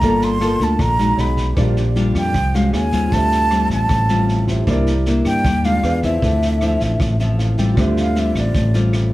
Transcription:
Already playing: A#5
0.00 G1 G3 A3 A#3 F4 A4 D5, kick, snare
0.05 F5
0.21 C6, snare
0.40 A#3 F4 A4, cross-stick, snare
0.60 D2 A5, kick, snare
0.79 A#1 D3 A#5, kick, cross-stick, snare
0.99 G#3 D#4 F#4, snare
1.17 B1 G#4 C#5 D#5 F#5 B5, snare
1.37 kick, snare
1.54 A#1 A#2 G3 D4 F4 G4 C5, kick, cross-stick, snare
1.58 D5 F5
1.77 snare
1.96 G3 D4 F4, snare
2.15 F2 G5, kick, cross-stick, snare
2.34 C2 F3, kick, snare
2.54 G#3 C#4 F#4 F5, snare
2.73 D#2 G#4 C#5 F5 G#5, cross-stick, snare
2.92 G3 C4 F4, kick, snare
3.09 D2 D3 F4 G4 C5 A5, kick, snare
3.16 E5
3.32 snare
3.51 G3 C4 F4, cross-stick, snare
3.70 A1 A5, kick, snare
3.89 A1 A2, kick, cross-stick, snare
4.09 G3 C4 F4, snare
4.28 snare
4.47 F4 G4 C5 E5, kick, snare
4.64 C2 C3 A#3 D4 E4 G4, kick, cross-stick, snare
4.69 A#4 D5
4.86 snare
5.06 A#3 D4 E4, snare
5.25 G2 G5, kick, cross-stick, snare
5.44 D#2 G3, kick, snare
5.64 G#3 D4 F4 F5, snare
5.83 E2 G#4 B4 D5, cross-stick, snare
6.03 F3 C4 E4 E5, kick, snare
6.22 D2 D3 A4 C5 E5, kick, snare
6.42 snare
6.61 F3 C4 E4, cross-stick, snare
6.80 A1, kick, snare
7.00 A1 A2, kick, cross-stick, snare
7.20 F3 C4 E4, snare
7.39 F5, snare
7.58 G3 C4 F4 G5, kick, snare
7.74 D2 D3 F4 G4, kick, cross-stick, snare
7.78 C5 E5
7.97 F5, snare
8.15 G3 C4 F4 E5, snare
8.35 A1 D5, kick, cross-stick, snare
8.54 A1 A2, kick, snare
8.74 G3 C4 F4, snare
8.93 cross-stick, snare

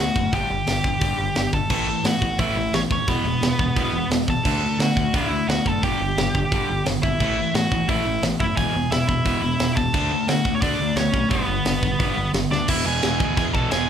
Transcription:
Already playing: F#4 F#5
0.00 D3 A3
0.16 F#1 D3 A3, kick
0.32 G1 G2 D3 G3 G4 G5, kick, open hi-hat
0.50 G1 G2 D3
0.67 G1 G2 D3, snare, open hi-hat
0.84 G1 G2 D3, kick
1.00 G1 G2 D3 G3, kick, open hi-hat
1.18 G1 G2 D3
1.35 G1 G2 D3, snare, open hi-hat
1.53 G1 G2 D3 A4 A5, kick
1.70 A1 A2 E3 A3, kick, crash
1.87 A2 E3
2.04 A2 E3 F#4 F#5, snare, open hi-hat
2.22 A1 A2 E3, kick
2.39 A1 A2 E3 A3 E4 E5, kick, open hi-hat
2.56 A1 A2 E3
2.73 A1 A2 E3 C#4 C#5, snare, open hi-hat
2.91 D#2 A2 E3 C#4 C#5, kick
3.07 E1 E2 B2 E3 B3 B4, kick, open hi-hat
3.23 E1 E2 B2
3.41 E1 E2 B2, snare, open hi-hat
3.59 E1 E2 B2, kick
3.76 E1 E2 B2 E3, kick, open hi-hat
3.93 E1 E2 B2
4.10 E1 E2 B2, snare, open hi-hat
4.28 E1 E2 B2 A4 A5, kick
4.45 D2 D3 A3 D4, kick, crash
4.63 D3 A3
4.79 D3 A3 F#4 F#5, snare, open hi-hat
4.96 D2 D3 A3, kick
5.14 D2 D3 A3 D4 E4 E5, kick, open hi-hat
5.30 D2 D3 A3
5.48 D2 D3 A3 F#4 F#5, snare, open hi-hat
5.66 F#1 D3 A3 A4 A5, kick
5.83 G1 G2 D3 G3 G4 G5, kick, open hi-hat
6.00 G1 G2 D3
6.17 G1 G2 D3, snare, open hi-hat
6.35 G1 G2 D3, kick
6.52 G1 G2 D3 G3, kick, open hi-hat
6.69 G1 G2 D3
6.86 G1 G2 D3, snare, open hi-hat
7.03 G1 G2 D3 E4 E5, kick
7.20 A1 A2 E3 A3, kick, crash
7.38 A2 E3
7.55 A2 E3 F#4 F#5, snare, open hi-hat
7.71 A1 A2 E3, kick
7.89 A1 A2 E3 A3 E4 E5, kick, open hi-hat
8.06 A1 A2 E3
8.22 A1 A2 E3, snare, open hi-hat
8.40 F#1 A2 E3 E4 E5, kick
8.57 E1 E2 B2 E3 G#4 G#5, kick, open hi-hat
8.75 E1 E2 B2
8.91 E1 E2 B2 E4 E5, snare, open hi-hat
9.08 E1 E2 B2 E4 E5, kick
9.25 E1 E2 B2 E3, kick, open hi-hat
9.42 E1 E2 B2
9.60 E1 E2 B2, snare, open hi-hat
9.76 E1 E2 B2 A4 A5, kick
9.94 D2 D3 A3 D4, kick, crash
10.11 D3 A3
10.28 D3 A3 F#4 F#5, snare, open hi-hat
10.45 D2 D3 A3, kick
10.54 C#5
10.62 D2 D3 A3 D4 D5, kick, open hi-hat
10.80 D2 D3 A3
10.96 D2 D3 A3 C#4 C#5, snare, open hi-hat
11.13 B1 D3 A3, kick
11.30 G1 G2 D3 G3 B3 B4, kick, open hi-hat
11.49 G1 G2 D3
11.65 G1 G2 D3, snare, open hi-hat
11.82 G1 G2 D3, kick
11.99 G1 G2 D3 G3, kick, open hi-hat
12.17 G1 G2 D3
12.34 G1 G2 D3, snare, open hi-hat
12.51 D2 G2 D3 D4 D5, snare
12.68 E1 E2 B2 E3 E4 E5, kick, crash
12.86 E1 E2 B2 E3 G#4 G#5
13.03 E1 E2 B2 E3, snare, crash
13.20 D2 E2 B2 E3, kick
13.37 E2 B2 E3 G#4 G#5, kick, crash
13.53 B1 E2 B2 E3 A4 A5, kick
13.71 E1 E2 B2 E3 G#4 G#5, snare, crash

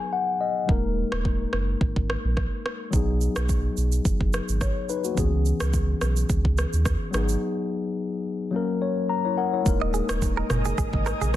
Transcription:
Already playing: F#3 B3 D#4 G#4 G#5
0.13 F#5
0.41 D#5
0.66 D#1 F#3 A#3 D#4, kick
0.71 G#3 A#4
1.12 D#1, cross-stick
1.25 kick
1.53 F#1, cross-stick
1.81 G#1, kick
1.96 kick
2.10 cross-stick
2.24 A#1
2.37 kick, cross-stick
2.66 cross-stick
2.91 B1 F#3 B3 D#4, kick, shaker
2.96 G#4
3.21 shaker
3.36 B1, cross-stick, shaker
3.49 kick, shaker
3.77 B1, shaker
3.92 shaker
4.05 F#1, kick, shaker
4.21 kick
4.33 cross-stick, shaker
4.49 G#1, shaker
4.61 C#5, kick, cross-stick, shaker
4.89 D#4 B4, shaker
5.04 A#3 F#4, shaker
5.15 C#2 E3 B3 C#4, kick, shaker
5.20 G#4
5.45 shaker
5.60 C#2, cross-stick, shaker
5.73 kick, shaker
6.01 B1, cross-stick, shaker
6.17 shaker
6.30 C#2, kick, shaker
6.45 kick
6.58 cross-stick, shaker
6.73 D#2, shaker
6.85 kick, cross-stick, shaker
7.11 G#1 F#3 B3 D#4, cross-stick, shaker
7.16 G#4
7.29 shaker
8.51 F#3 A#3 C#4
8.56 A#4
8.82 C#5
9.09 A#5
9.25 E4 C#5
9.37 A#4 F#5
9.53 E4 C#5
9.63 D#1 G#3 A#3 D#4 A#4 D#5 G#5 D#6, kick, shaker
9.68 A#4
9.81 D#5
9.94 G#4, shaker
10.09 D#1, cross-stick, shaker
10.22 kick, low conga, shaker
10.37 A#4
10.50 F#1, cross-stick, mid tom, shaker
10.65 G#4, high conga, shaker
10.78 G#1 G#4, kick, shaker
10.93 kick, high conga
11.06 A#4, cross-stick, shaker
11.21 A#1 G#4, high conga, shaker

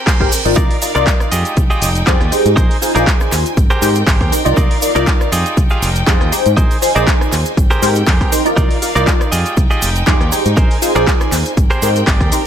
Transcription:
Already playing: C4 A#4 G5, reverse cymbal
0.06 G4 G#4 A#4 C5, kick, clap, open hi-hat, shaker
0.20 G#1 D#4 G4 A#4 C5, kick, cross-stick, shaker
0.32 open hi-hat, shaker
0.45 G#1 D#4 F4 A#4 D5, closed hi-hat, shaker
0.56 D#4 F4 A#4 D5 F5, kick, closed hi-hat, shaker
0.71 open hi-hat, shaker
0.82 D#4 F4 A#4 D5, open hi-hat, shaker
0.95 C2 D#4 F4 A#4 D5, cross-stick, closed hi-hat, shaker
1.07 kick, clap, closed hi-hat, shaker
1.20 cross-stick, shaker
1.31 F2 G#3 F4 G4 G#4 D#5 G5, open hi-hat, shaker
1.45 closed hi-hat, shaker
1.57 C2, kick, closed hi-hat, shaker
1.70 F4 G4 G#4 D#5, shaker
1.82 F1, open hi-hat, shaker
1.95 closed hi-hat, shaker
2.06 F2 D#4 F4 G4 G#4 C5 D5, kick, clap, closed hi-hat, shaker
2.21 D#2, cross-stick, shaker
2.32 D#4 G4 G#4 C5, muted fingered electric bass stroke, open hi-hat, shaker
2.45 G#2, closed hi-hat, shaker
2.56 A#1 D#4 G#4 A#4 C5 G#5, kick, closed hi-hat, shaker
2.71 open hi-hat, shaker
2.82 D#4 F4 G#4 C5, open hi-hat, shaker
2.95 A#1 D#4 F4 G#4 A#4 C5 D5, cross-stick, closed hi-hat, shaker
3.07 kick, clap, closed hi-hat, shaker
3.20 cross-stick, shaker
3.32 D#2, clap, open hi-hat, shaker
3.46 closed hi-hat, shaker
3.57 G#1 C4 A#4 G5, kick, closed hi-hat, shaker
3.70 G4 G#4 A#4 C5, shaker
3.82 G#2 D#4 G4 A#4 C5, open hi-hat, shaker
3.95 closed hi-hat, shaker
4.07 G#1 G4 G#4 A#4 C5, kick, clap, open hi-hat, shaker
4.21 D#2, kick, cross-stick, shaker
4.32 D#4 G4 A#4 C5, muted fingered electric bass stroke, open hi-hat, shaker
4.45 C2 D#4 F4 A#4 D5, closed hi-hat, shaker
4.57 D#4 F4 A#4 D5 F5, kick, closed hi-hat, shaker
4.71 open hi-hat, shaker
4.81 D#4 F4 A#4 D5, open hi-hat, shaker
4.95 C2 D#4 F4 A#4 D5, cross-stick, closed hi-hat, shaker
5.07 kick, clap, closed hi-hat, shaker
5.21 cross-stick, shaker
5.32 F2 G#3 F4 G4 G#4 D#5 G5, open hi-hat, shaker
5.46 closed hi-hat, shaker
5.57 C2, kick, closed hi-hat, shaker
5.70 F4 G4 G#4 F5, shaker
5.82 F1, open hi-hat, shaker
5.95 closed hi-hat, shaker
6.07 F2 D#4 F4 G4 G#4 C5 D#5, kick, clap, closed hi-hat, shaker
6.21 D#2, cross-stick, shaker
6.32 D#4 G4 G#4 C5, open hi-hat, shaker
6.46 G#2, closed hi-hat, shaker
6.57 A#1 D#4 G#4 A#4 C5 G#5, kick, closed hi-hat, shaker
6.71 open hi-hat, shaker
6.82 D#4 F4 G#4 C5, open hi-hat, shaker
6.95 A#1 D#4 F4 G#4 A#4 C5 D5, cross-stick, closed hi-hat, shaker
7.07 kick, clap, closed hi-hat, shaker
7.21 cross-stick, shaker
7.32 D#2, clap, open hi-hat, shaker
7.45 closed hi-hat, shaker
7.57 G#1 C4 A#4 G5, kick, closed hi-hat, shaker
7.70 G4 G#4 A#4 C5, shaker
7.82 G#2 D#4 G4 A#4 C5, open hi-hat, shaker
7.95 closed hi-hat, shaker
7.96 shaker
8.07 F2 G4 G#4 A#4 C5, kick, clap, open hi-hat, shaker
8.21 kick, cross-stick, shaker
8.32 D#4 G4 A#4 C5, open hi-hat, shaker
8.45 D#4 F4 A#4 D5, closed hi-hat, shaker
8.56 C2 D#4 F4 A#4 D5 F5, kick, closed hi-hat, shaker
8.71 open hi-hat, shaker
8.82 D#4 F4 A#4 D5, open hi-hat, shaker
8.95 C2 D#4 F4 A#4 D5, cross-stick, closed hi-hat, shaker
9.07 kick, clap, closed hi-hat, shaker
9.21 cross-stick, shaker
9.32 F2 G#3 F4 G4 G#4 D#5 G5, open hi-hat, shaker
9.46 closed hi-hat, shaker
9.57 C2, kick, closed hi-hat, shaker
9.70 F4 G4 G#4 D#5, shaker
9.82 F1, open hi-hat, shaker
9.96 closed hi-hat, shaker
10.06 F2 D#4 F4 G4 G#4 C5 D5, kick, clap, closed hi-hat, shaker
10.21 D#2, cross-stick, shaker
10.32 D#4 G4 G#4 C5, open hi-hat, shaker
10.45 G#2, closed hi-hat, shaker
10.57 A#1 D#4 G#4 A#4 C5 G#5, kick, closed hi-hat, shaker
10.71 open hi-hat, shaker
10.82 D#4 F4 G#4 C5, open hi-hat, shaker
10.95 A#1 D#4 F4 G#4 A#4 C5 D5, cross-stick, closed hi-hat, shaker
11.07 kick, clap, closed hi-hat, shaker
11.21 cross-stick, shaker
11.32 D#2, clap, open hi-hat, shaker
11.45 closed hi-hat, shaker
11.57 G#1 C4 A#4 G5, kick, closed hi-hat, shaker
11.70 G4 G#4 A#4 C5, shaker
11.82 G#2 D#4 G4 A#4 C5, open hi-hat, shaker
11.96 closed hi-hat, shaker
12.07 G#1 G4 G#4 A#4 D5, kick, clap, open hi-hat, shaker
12.21 D#2, kick, cross-stick, shaker
12.32 D#4 G4 A#4 C5, muted fingered electric bass stroke, open hi-hat, shaker

